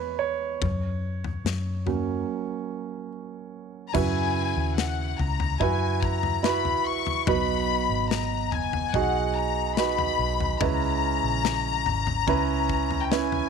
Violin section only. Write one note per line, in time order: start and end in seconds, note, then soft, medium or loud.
3.89 3.95 A#5 medium
3.95 4.78 G#5 medium
4.77 5.16 F#5 medium
5.19 5.61 A#5 medium
5.61 6.03 G#5 medium
6.03 6.44 A#5 medium
6.44 6.86 B5 medium
6.87 7.28 C#6 loud
7.30 8.08 B5 loud
8.12 8.53 A#5 medium
8.53 8.94 G#5 medium
8.94 9.36 F#5 loud
9.35 9.77 A#5 medium
9.78 10.57 B5 loud
10.60 13.04 A#5 loud
13.04 13.11 G5 medium
13.12 13.49 G#5 medium